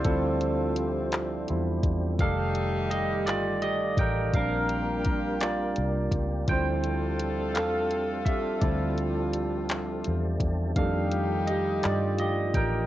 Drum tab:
HH |xxxxxx|xxxxxx|xxxxxx|xxxxxx|
CP |---x--|---x--|---x--|---x--|
BD |o----o|o----o|o-o--o|o----o|

HH |xxxxxx|xxxxxx|
CP |---x--|---x--|
BD |o----o|o----o|